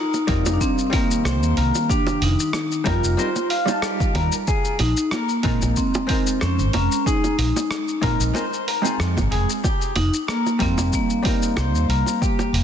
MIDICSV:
0, 0, Header, 1, 6, 480
1, 0, Start_track
1, 0, Tempo, 645161
1, 1411, Time_signature, 4, 2, 24, 8
1, 9401, End_track
2, 0, Start_track
2, 0, Title_t, "Clean electric guitar"
2, 0, Program_c, 0, 27
2, 0, Note_on_c, 0, 70, 95
2, 105, Note_off_c, 0, 70, 0
2, 929, Note_on_c, 0, 72, 100
2, 1159, Note_off_c, 0, 72, 0
2, 1171, Note_on_c, 0, 70, 73
2, 1389, Note_off_c, 0, 70, 0
2, 1411, Note_on_c, 0, 67, 81
2, 1628, Note_off_c, 0, 67, 0
2, 2131, Note_on_c, 0, 70, 100
2, 2267, Note_off_c, 0, 70, 0
2, 2369, Note_on_c, 0, 72, 81
2, 2599, Note_off_c, 0, 72, 0
2, 2606, Note_on_c, 0, 77, 97
2, 2826, Note_off_c, 0, 77, 0
2, 2849, Note_on_c, 0, 67, 77
2, 3068, Note_off_c, 0, 67, 0
2, 3090, Note_on_c, 0, 70, 94
2, 3227, Note_off_c, 0, 70, 0
2, 3330, Note_on_c, 0, 68, 83
2, 3548, Note_off_c, 0, 68, 0
2, 3811, Note_on_c, 0, 70, 101
2, 3948, Note_off_c, 0, 70, 0
2, 4770, Note_on_c, 0, 72, 103
2, 4999, Note_off_c, 0, 72, 0
2, 5012, Note_on_c, 0, 70, 76
2, 5229, Note_off_c, 0, 70, 0
2, 5253, Note_on_c, 0, 68, 85
2, 5469, Note_off_c, 0, 68, 0
2, 5975, Note_on_c, 0, 70, 100
2, 6109, Note_off_c, 0, 70, 0
2, 6214, Note_on_c, 0, 72, 83
2, 6441, Note_off_c, 0, 72, 0
2, 6457, Note_on_c, 0, 70, 71
2, 6682, Note_off_c, 0, 70, 0
2, 6930, Note_on_c, 0, 68, 73
2, 7067, Note_off_c, 0, 68, 0
2, 7170, Note_on_c, 0, 67, 87
2, 7388, Note_off_c, 0, 67, 0
2, 7649, Note_on_c, 0, 70, 103
2, 7786, Note_off_c, 0, 70, 0
2, 8612, Note_on_c, 0, 72, 100
2, 8840, Note_off_c, 0, 72, 0
2, 8852, Note_on_c, 0, 70, 74
2, 9069, Note_off_c, 0, 70, 0
2, 9090, Note_on_c, 0, 67, 84
2, 9308, Note_off_c, 0, 67, 0
2, 9401, End_track
3, 0, Start_track
3, 0, Title_t, "Hollow-body jazz guitar"
3, 0, Program_c, 1, 26
3, 202, Note_on_c, 1, 55, 85
3, 206, Note_on_c, 1, 60, 73
3, 212, Note_on_c, 1, 63, 72
3, 215, Note_on_c, 1, 65, 71
3, 221, Note_on_c, 1, 70, 97
3, 659, Note_off_c, 1, 55, 0
3, 662, Note_off_c, 1, 60, 0
3, 663, Note_off_c, 1, 63, 0
3, 666, Note_off_c, 1, 65, 0
3, 669, Note_off_c, 1, 70, 0
3, 669, Note_on_c, 1, 55, 82
3, 679, Note_on_c, 1, 60, 78
3, 688, Note_on_c, 1, 51, 77
3, 693, Note_on_c, 1, 65, 77
3, 701, Note_on_c, 1, 70, 89
3, 2093, Note_off_c, 1, 55, 0
3, 2098, Note_off_c, 1, 60, 0
3, 2102, Note_off_c, 1, 51, 0
3, 2105, Note_off_c, 1, 65, 0
3, 2109, Note_off_c, 1, 70, 0
3, 2113, Note_on_c, 1, 55, 79
3, 2119, Note_on_c, 1, 60, 71
3, 2124, Note_on_c, 1, 63, 74
3, 2130, Note_on_c, 1, 65, 57
3, 2133, Note_on_c, 1, 70, 89
3, 2335, Note_off_c, 1, 55, 0
3, 2338, Note_off_c, 1, 60, 0
3, 2341, Note_off_c, 1, 63, 0
3, 2342, Note_off_c, 1, 65, 0
3, 2345, Note_off_c, 1, 70, 0
3, 2360, Note_on_c, 1, 55, 95
3, 2364, Note_on_c, 1, 60, 73
3, 2369, Note_on_c, 1, 63, 89
3, 2372, Note_on_c, 1, 65, 71
3, 2375, Note_on_c, 1, 70, 105
3, 2436, Note_off_c, 1, 55, 0
3, 2437, Note_off_c, 1, 60, 0
3, 2440, Note_off_c, 1, 63, 0
3, 2440, Note_off_c, 1, 65, 0
3, 2443, Note_off_c, 1, 70, 0
3, 2720, Note_on_c, 1, 55, 81
3, 2728, Note_on_c, 1, 60, 75
3, 2737, Note_on_c, 1, 63, 77
3, 2742, Note_off_c, 1, 60, 0
3, 2745, Note_on_c, 1, 65, 73
3, 2754, Note_on_c, 1, 81, 86
3, 3308, Note_off_c, 1, 55, 0
3, 3316, Note_off_c, 1, 63, 0
3, 3320, Note_off_c, 1, 65, 0
3, 3325, Note_off_c, 1, 81, 0
3, 4041, Note_on_c, 1, 56, 83
3, 4048, Note_on_c, 1, 60, 65
3, 4050, Note_on_c, 1, 63, 74
3, 4054, Note_on_c, 1, 65, 75
3, 4061, Note_on_c, 1, 70, 76
3, 4499, Note_off_c, 1, 56, 0
3, 4501, Note_off_c, 1, 60, 0
3, 4504, Note_off_c, 1, 63, 0
3, 4506, Note_off_c, 1, 65, 0
3, 4508, Note_off_c, 1, 70, 0
3, 4514, Note_on_c, 1, 56, 85
3, 4521, Note_on_c, 1, 72, 78
3, 4531, Note_on_c, 1, 63, 75
3, 4539, Note_on_c, 1, 65, 76
3, 4548, Note_on_c, 1, 70, 88
3, 5935, Note_off_c, 1, 56, 0
3, 5939, Note_off_c, 1, 72, 0
3, 5944, Note_off_c, 1, 63, 0
3, 5948, Note_off_c, 1, 65, 0
3, 5953, Note_off_c, 1, 70, 0
3, 5963, Note_on_c, 1, 56, 80
3, 5969, Note_on_c, 1, 60, 70
3, 5972, Note_on_c, 1, 63, 73
3, 5977, Note_on_c, 1, 65, 70
3, 5981, Note_on_c, 1, 70, 73
3, 6180, Note_off_c, 1, 56, 0
3, 6183, Note_off_c, 1, 60, 0
3, 6184, Note_off_c, 1, 63, 0
3, 6187, Note_off_c, 1, 65, 0
3, 6187, Note_off_c, 1, 70, 0
3, 6201, Note_on_c, 1, 56, 90
3, 6206, Note_on_c, 1, 60, 71
3, 6207, Note_on_c, 1, 63, 93
3, 6213, Note_on_c, 1, 65, 88
3, 6218, Note_on_c, 1, 70, 106
3, 6277, Note_off_c, 1, 56, 0
3, 6277, Note_off_c, 1, 60, 0
3, 6279, Note_off_c, 1, 63, 0
3, 6282, Note_off_c, 1, 65, 0
3, 6284, Note_off_c, 1, 70, 0
3, 6560, Note_on_c, 1, 56, 83
3, 6568, Note_on_c, 1, 60, 76
3, 6580, Note_on_c, 1, 63, 78
3, 6587, Note_on_c, 1, 65, 77
3, 6597, Note_on_c, 1, 68, 89
3, 7148, Note_off_c, 1, 56, 0
3, 7152, Note_off_c, 1, 60, 0
3, 7158, Note_off_c, 1, 63, 0
3, 7161, Note_off_c, 1, 65, 0
3, 7167, Note_off_c, 1, 68, 0
3, 7879, Note_on_c, 1, 55, 92
3, 7885, Note_on_c, 1, 60, 73
3, 7888, Note_on_c, 1, 63, 73
3, 7891, Note_on_c, 1, 65, 81
3, 7896, Note_on_c, 1, 70, 95
3, 8338, Note_off_c, 1, 55, 0
3, 8339, Note_off_c, 1, 60, 0
3, 8342, Note_off_c, 1, 63, 0
3, 8344, Note_off_c, 1, 65, 0
3, 8346, Note_off_c, 1, 70, 0
3, 8351, Note_on_c, 1, 55, 82
3, 8358, Note_on_c, 1, 60, 77
3, 8367, Note_on_c, 1, 63, 81
3, 8376, Note_on_c, 1, 65, 75
3, 8383, Note_on_c, 1, 70, 91
3, 9401, Note_off_c, 1, 55, 0
3, 9401, Note_off_c, 1, 60, 0
3, 9401, Note_off_c, 1, 63, 0
3, 9401, Note_off_c, 1, 65, 0
3, 9401, Note_off_c, 1, 70, 0
3, 9401, End_track
4, 0, Start_track
4, 0, Title_t, "Vibraphone"
4, 0, Program_c, 2, 11
4, 0, Note_on_c, 2, 63, 107
4, 398, Note_on_c, 2, 62, 75
4, 415, Note_off_c, 2, 63, 0
4, 449, Note_off_c, 2, 62, 0
4, 454, Note_on_c, 2, 60, 92
4, 637, Note_off_c, 2, 60, 0
4, 646, Note_on_c, 2, 60, 71
4, 692, Note_off_c, 2, 60, 0
4, 693, Note_on_c, 2, 58, 93
4, 1416, Note_on_c, 2, 62, 99
4, 1433, Note_off_c, 2, 58, 0
4, 1660, Note_off_c, 2, 62, 0
4, 1661, Note_on_c, 2, 63, 89
4, 2146, Note_on_c, 2, 65, 92
4, 2150, Note_off_c, 2, 63, 0
4, 2588, Note_off_c, 2, 65, 0
4, 3576, Note_on_c, 2, 63, 104
4, 3811, Note_on_c, 2, 58, 89
4, 3820, Note_off_c, 2, 63, 0
4, 4294, Note_on_c, 2, 60, 91
4, 4305, Note_off_c, 2, 58, 0
4, 4778, Note_on_c, 2, 61, 104
4, 4787, Note_off_c, 2, 60, 0
4, 4885, Note_off_c, 2, 61, 0
4, 5015, Note_on_c, 2, 61, 89
4, 5259, Note_on_c, 2, 63, 99
4, 5260, Note_off_c, 2, 61, 0
4, 6185, Note_off_c, 2, 63, 0
4, 7412, Note_on_c, 2, 63, 106
4, 7520, Note_off_c, 2, 63, 0
4, 7653, Note_on_c, 2, 58, 99
4, 7899, Note_off_c, 2, 58, 0
4, 7903, Note_on_c, 2, 60, 100
4, 8120, Note_off_c, 2, 60, 0
4, 8144, Note_on_c, 2, 58, 86
4, 9401, Note_off_c, 2, 58, 0
4, 9401, End_track
5, 0, Start_track
5, 0, Title_t, "Fretless electric bass"
5, 0, Program_c, 3, 35
5, 212, Note_on_c, 3, 41, 72
5, 304, Note_off_c, 3, 41, 0
5, 332, Note_on_c, 3, 29, 80
5, 417, Note_off_c, 3, 29, 0
5, 925, Note_on_c, 3, 36, 85
5, 1054, Note_off_c, 3, 36, 0
5, 1054, Note_on_c, 3, 39, 93
5, 1138, Note_off_c, 3, 39, 0
5, 1167, Note_on_c, 3, 36, 87
5, 1262, Note_off_c, 3, 36, 0
5, 1644, Note_on_c, 3, 29, 101
5, 1741, Note_off_c, 3, 29, 0
5, 2130, Note_on_c, 3, 41, 73
5, 2224, Note_off_c, 3, 41, 0
5, 2255, Note_on_c, 3, 29, 86
5, 2339, Note_off_c, 3, 29, 0
5, 3085, Note_on_c, 3, 39, 92
5, 3181, Note_off_c, 3, 39, 0
5, 3567, Note_on_c, 3, 34, 101
5, 3662, Note_off_c, 3, 34, 0
5, 4050, Note_on_c, 3, 46, 75
5, 4143, Note_off_c, 3, 46, 0
5, 4180, Note_on_c, 3, 34, 83
5, 4261, Note_off_c, 3, 34, 0
5, 4772, Note_on_c, 3, 41, 86
5, 4898, Note_on_c, 3, 32, 95
5, 4910, Note_off_c, 3, 41, 0
5, 4980, Note_off_c, 3, 32, 0
5, 5013, Note_on_c, 3, 29, 92
5, 5105, Note_off_c, 3, 29, 0
5, 5491, Note_on_c, 3, 34, 100
5, 5584, Note_off_c, 3, 34, 0
5, 5974, Note_on_c, 3, 46, 76
5, 6066, Note_off_c, 3, 46, 0
5, 6096, Note_on_c, 3, 34, 90
5, 6179, Note_off_c, 3, 34, 0
5, 6689, Note_on_c, 3, 41, 86
5, 6822, Note_on_c, 3, 32, 92
5, 6833, Note_off_c, 3, 41, 0
5, 6902, Note_off_c, 3, 32, 0
5, 6929, Note_on_c, 3, 29, 90
5, 7023, Note_off_c, 3, 29, 0
5, 7406, Note_on_c, 3, 29, 92
5, 7502, Note_off_c, 3, 29, 0
5, 7892, Note_on_c, 3, 41, 77
5, 7985, Note_off_c, 3, 41, 0
5, 8012, Note_on_c, 3, 29, 84
5, 8097, Note_off_c, 3, 29, 0
5, 8606, Note_on_c, 3, 36, 88
5, 8734, Note_off_c, 3, 36, 0
5, 8734, Note_on_c, 3, 39, 91
5, 8818, Note_off_c, 3, 39, 0
5, 8842, Note_on_c, 3, 36, 98
5, 8940, Note_off_c, 3, 36, 0
5, 9321, Note_on_c, 3, 29, 90
5, 9401, Note_off_c, 3, 29, 0
5, 9401, End_track
6, 0, Start_track
6, 0, Title_t, "Drums"
6, 102, Note_on_c, 9, 82, 37
6, 103, Note_on_c, 9, 60, 49
6, 176, Note_off_c, 9, 82, 0
6, 178, Note_off_c, 9, 60, 0
6, 207, Note_on_c, 9, 46, 86
6, 212, Note_on_c, 9, 36, 112
6, 282, Note_off_c, 9, 46, 0
6, 286, Note_off_c, 9, 36, 0
6, 340, Note_on_c, 9, 82, 77
6, 344, Note_on_c, 9, 60, 77
6, 414, Note_off_c, 9, 82, 0
6, 418, Note_off_c, 9, 60, 0
6, 451, Note_on_c, 9, 36, 61
6, 455, Note_on_c, 9, 82, 63
6, 526, Note_off_c, 9, 36, 0
6, 530, Note_off_c, 9, 82, 0
6, 583, Note_on_c, 9, 82, 32
6, 658, Note_off_c, 9, 82, 0
6, 690, Note_on_c, 9, 46, 87
6, 690, Note_on_c, 9, 60, 57
6, 691, Note_on_c, 9, 36, 113
6, 764, Note_off_c, 9, 46, 0
6, 764, Note_off_c, 9, 60, 0
6, 766, Note_off_c, 9, 36, 0
6, 826, Note_on_c, 9, 82, 64
6, 900, Note_off_c, 9, 82, 0
6, 932, Note_on_c, 9, 37, 101
6, 936, Note_on_c, 9, 60, 67
6, 938, Note_on_c, 9, 82, 61
6, 1007, Note_off_c, 9, 37, 0
6, 1011, Note_off_c, 9, 60, 0
6, 1012, Note_off_c, 9, 82, 0
6, 1064, Note_on_c, 9, 82, 37
6, 1138, Note_off_c, 9, 82, 0
6, 1168, Note_on_c, 9, 46, 80
6, 1243, Note_off_c, 9, 46, 0
6, 1301, Note_on_c, 9, 82, 73
6, 1304, Note_on_c, 9, 60, 51
6, 1375, Note_off_c, 9, 82, 0
6, 1379, Note_off_c, 9, 60, 0
6, 1410, Note_on_c, 9, 36, 123
6, 1416, Note_on_c, 9, 82, 54
6, 1485, Note_off_c, 9, 36, 0
6, 1490, Note_off_c, 9, 82, 0
6, 1537, Note_on_c, 9, 60, 82
6, 1542, Note_on_c, 9, 82, 33
6, 1612, Note_off_c, 9, 60, 0
6, 1616, Note_off_c, 9, 82, 0
6, 1651, Note_on_c, 9, 46, 86
6, 1725, Note_off_c, 9, 46, 0
6, 1783, Note_on_c, 9, 82, 71
6, 1857, Note_off_c, 9, 82, 0
6, 1884, Note_on_c, 9, 37, 96
6, 1888, Note_on_c, 9, 60, 50
6, 1889, Note_on_c, 9, 82, 54
6, 1959, Note_off_c, 9, 37, 0
6, 1962, Note_off_c, 9, 60, 0
6, 1964, Note_off_c, 9, 82, 0
6, 2020, Note_on_c, 9, 82, 36
6, 2095, Note_off_c, 9, 82, 0
6, 2125, Note_on_c, 9, 46, 83
6, 2130, Note_on_c, 9, 36, 61
6, 2133, Note_on_c, 9, 60, 78
6, 2200, Note_off_c, 9, 46, 0
6, 2204, Note_off_c, 9, 36, 0
6, 2207, Note_off_c, 9, 60, 0
6, 2262, Note_on_c, 9, 82, 70
6, 2337, Note_off_c, 9, 82, 0
6, 2374, Note_on_c, 9, 82, 56
6, 2448, Note_off_c, 9, 82, 0
6, 2498, Note_on_c, 9, 60, 56
6, 2498, Note_on_c, 9, 82, 32
6, 2572, Note_off_c, 9, 82, 0
6, 2573, Note_off_c, 9, 60, 0
6, 2605, Note_on_c, 9, 46, 84
6, 2680, Note_off_c, 9, 46, 0
6, 2738, Note_on_c, 9, 82, 64
6, 2739, Note_on_c, 9, 60, 76
6, 2813, Note_off_c, 9, 82, 0
6, 2814, Note_off_c, 9, 60, 0
6, 2845, Note_on_c, 9, 37, 94
6, 2850, Note_on_c, 9, 82, 55
6, 2919, Note_off_c, 9, 37, 0
6, 2924, Note_off_c, 9, 82, 0
6, 2978, Note_on_c, 9, 36, 114
6, 2982, Note_on_c, 9, 82, 36
6, 3053, Note_off_c, 9, 36, 0
6, 3057, Note_off_c, 9, 82, 0
6, 3087, Note_on_c, 9, 46, 85
6, 3092, Note_on_c, 9, 60, 59
6, 3161, Note_off_c, 9, 46, 0
6, 3166, Note_off_c, 9, 60, 0
6, 3216, Note_on_c, 9, 82, 69
6, 3290, Note_off_c, 9, 82, 0
6, 3329, Note_on_c, 9, 82, 54
6, 3331, Note_on_c, 9, 36, 118
6, 3403, Note_off_c, 9, 82, 0
6, 3406, Note_off_c, 9, 36, 0
6, 3457, Note_on_c, 9, 82, 33
6, 3532, Note_off_c, 9, 82, 0
6, 3563, Note_on_c, 9, 46, 90
6, 3567, Note_on_c, 9, 60, 55
6, 3638, Note_off_c, 9, 46, 0
6, 3642, Note_off_c, 9, 60, 0
6, 3698, Note_on_c, 9, 82, 64
6, 3772, Note_off_c, 9, 82, 0
6, 3804, Note_on_c, 9, 37, 93
6, 3810, Note_on_c, 9, 82, 57
6, 3817, Note_on_c, 9, 60, 80
6, 3879, Note_off_c, 9, 37, 0
6, 3884, Note_off_c, 9, 82, 0
6, 3891, Note_off_c, 9, 60, 0
6, 3934, Note_on_c, 9, 82, 33
6, 4009, Note_off_c, 9, 82, 0
6, 4041, Note_on_c, 9, 46, 86
6, 4052, Note_on_c, 9, 36, 107
6, 4116, Note_off_c, 9, 46, 0
6, 4127, Note_off_c, 9, 36, 0
6, 4179, Note_on_c, 9, 82, 68
6, 4186, Note_on_c, 9, 60, 52
6, 4254, Note_off_c, 9, 82, 0
6, 4261, Note_off_c, 9, 60, 0
6, 4288, Note_on_c, 9, 82, 58
6, 4293, Note_on_c, 9, 36, 58
6, 4363, Note_off_c, 9, 82, 0
6, 4368, Note_off_c, 9, 36, 0
6, 4421, Note_on_c, 9, 82, 31
6, 4427, Note_on_c, 9, 60, 87
6, 4495, Note_off_c, 9, 82, 0
6, 4501, Note_off_c, 9, 60, 0
6, 4530, Note_on_c, 9, 46, 86
6, 4534, Note_on_c, 9, 36, 102
6, 4604, Note_off_c, 9, 46, 0
6, 4608, Note_off_c, 9, 36, 0
6, 4663, Note_on_c, 9, 82, 63
6, 4737, Note_off_c, 9, 82, 0
6, 4770, Note_on_c, 9, 37, 94
6, 4772, Note_on_c, 9, 60, 51
6, 4776, Note_on_c, 9, 82, 55
6, 4845, Note_off_c, 9, 37, 0
6, 4847, Note_off_c, 9, 60, 0
6, 4850, Note_off_c, 9, 82, 0
6, 4902, Note_on_c, 9, 82, 35
6, 4977, Note_off_c, 9, 82, 0
6, 5010, Note_on_c, 9, 46, 87
6, 5013, Note_on_c, 9, 60, 83
6, 5084, Note_off_c, 9, 46, 0
6, 5088, Note_off_c, 9, 60, 0
6, 5148, Note_on_c, 9, 82, 70
6, 5222, Note_off_c, 9, 82, 0
6, 5255, Note_on_c, 9, 36, 108
6, 5261, Note_on_c, 9, 82, 55
6, 5329, Note_off_c, 9, 36, 0
6, 5335, Note_off_c, 9, 82, 0
6, 5387, Note_on_c, 9, 60, 48
6, 5389, Note_on_c, 9, 82, 31
6, 5461, Note_off_c, 9, 60, 0
6, 5463, Note_off_c, 9, 82, 0
6, 5496, Note_on_c, 9, 46, 91
6, 5570, Note_off_c, 9, 46, 0
6, 5627, Note_on_c, 9, 60, 69
6, 5630, Note_on_c, 9, 82, 68
6, 5702, Note_off_c, 9, 60, 0
6, 5705, Note_off_c, 9, 82, 0
6, 5733, Note_on_c, 9, 37, 93
6, 5738, Note_on_c, 9, 82, 50
6, 5807, Note_off_c, 9, 37, 0
6, 5813, Note_off_c, 9, 82, 0
6, 5864, Note_on_c, 9, 82, 33
6, 5939, Note_off_c, 9, 82, 0
6, 5972, Note_on_c, 9, 46, 85
6, 5975, Note_on_c, 9, 36, 60
6, 5977, Note_on_c, 9, 60, 49
6, 6047, Note_off_c, 9, 46, 0
6, 6049, Note_off_c, 9, 36, 0
6, 6052, Note_off_c, 9, 60, 0
6, 6105, Note_on_c, 9, 82, 72
6, 6180, Note_off_c, 9, 82, 0
6, 6211, Note_on_c, 9, 60, 85
6, 6219, Note_on_c, 9, 82, 57
6, 6285, Note_off_c, 9, 60, 0
6, 6293, Note_off_c, 9, 82, 0
6, 6349, Note_on_c, 9, 82, 31
6, 6424, Note_off_c, 9, 82, 0
6, 6457, Note_on_c, 9, 46, 86
6, 6532, Note_off_c, 9, 46, 0
6, 6582, Note_on_c, 9, 60, 50
6, 6587, Note_on_c, 9, 82, 61
6, 6656, Note_off_c, 9, 60, 0
6, 6661, Note_off_c, 9, 82, 0
6, 6694, Note_on_c, 9, 37, 103
6, 6700, Note_on_c, 9, 82, 57
6, 6769, Note_off_c, 9, 37, 0
6, 6774, Note_off_c, 9, 82, 0
6, 6823, Note_on_c, 9, 36, 104
6, 6827, Note_on_c, 9, 60, 74
6, 6827, Note_on_c, 9, 82, 31
6, 6897, Note_off_c, 9, 36, 0
6, 6901, Note_off_c, 9, 60, 0
6, 6901, Note_off_c, 9, 82, 0
6, 6933, Note_on_c, 9, 46, 84
6, 7007, Note_off_c, 9, 46, 0
6, 7065, Note_on_c, 9, 82, 66
6, 7140, Note_off_c, 9, 82, 0
6, 7174, Note_on_c, 9, 36, 110
6, 7175, Note_on_c, 9, 60, 49
6, 7175, Note_on_c, 9, 82, 53
6, 7248, Note_off_c, 9, 36, 0
6, 7249, Note_off_c, 9, 82, 0
6, 7250, Note_off_c, 9, 60, 0
6, 7303, Note_on_c, 9, 82, 30
6, 7378, Note_off_c, 9, 82, 0
6, 7407, Note_on_c, 9, 46, 96
6, 7410, Note_on_c, 9, 60, 77
6, 7482, Note_off_c, 9, 46, 0
6, 7484, Note_off_c, 9, 60, 0
6, 7542, Note_on_c, 9, 82, 64
6, 7616, Note_off_c, 9, 82, 0
6, 7651, Note_on_c, 9, 37, 99
6, 7656, Note_on_c, 9, 82, 50
6, 7725, Note_off_c, 9, 37, 0
6, 7731, Note_off_c, 9, 82, 0
6, 7785, Note_on_c, 9, 60, 46
6, 7786, Note_on_c, 9, 82, 33
6, 7859, Note_off_c, 9, 60, 0
6, 7860, Note_off_c, 9, 82, 0
6, 7887, Note_on_c, 9, 46, 97
6, 7893, Note_on_c, 9, 36, 92
6, 7962, Note_off_c, 9, 46, 0
6, 7967, Note_off_c, 9, 36, 0
6, 8018, Note_on_c, 9, 60, 74
6, 8020, Note_on_c, 9, 82, 68
6, 8093, Note_off_c, 9, 60, 0
6, 8095, Note_off_c, 9, 82, 0
6, 8131, Note_on_c, 9, 82, 54
6, 8132, Note_on_c, 9, 36, 54
6, 8206, Note_off_c, 9, 82, 0
6, 8207, Note_off_c, 9, 36, 0
6, 8258, Note_on_c, 9, 82, 31
6, 8333, Note_off_c, 9, 82, 0
6, 8370, Note_on_c, 9, 46, 92
6, 8370, Note_on_c, 9, 60, 49
6, 8372, Note_on_c, 9, 36, 105
6, 8444, Note_off_c, 9, 46, 0
6, 8445, Note_off_c, 9, 60, 0
6, 8447, Note_off_c, 9, 36, 0
6, 8499, Note_on_c, 9, 82, 59
6, 8573, Note_off_c, 9, 82, 0
6, 8606, Note_on_c, 9, 60, 70
6, 8607, Note_on_c, 9, 37, 95
6, 8613, Note_on_c, 9, 82, 54
6, 8680, Note_off_c, 9, 60, 0
6, 8682, Note_off_c, 9, 37, 0
6, 8687, Note_off_c, 9, 82, 0
6, 8742, Note_on_c, 9, 82, 30
6, 8817, Note_off_c, 9, 82, 0
6, 8851, Note_on_c, 9, 46, 94
6, 8926, Note_off_c, 9, 46, 0
6, 8975, Note_on_c, 9, 60, 47
6, 8984, Note_on_c, 9, 82, 63
6, 9049, Note_off_c, 9, 60, 0
6, 9059, Note_off_c, 9, 82, 0
6, 9091, Note_on_c, 9, 36, 112
6, 9097, Note_on_c, 9, 82, 52
6, 9165, Note_off_c, 9, 36, 0
6, 9171, Note_off_c, 9, 82, 0
6, 9218, Note_on_c, 9, 60, 70
6, 9223, Note_on_c, 9, 82, 30
6, 9293, Note_off_c, 9, 60, 0
6, 9297, Note_off_c, 9, 82, 0
6, 9331, Note_on_c, 9, 46, 94
6, 9401, Note_off_c, 9, 46, 0
6, 9401, End_track
0, 0, End_of_file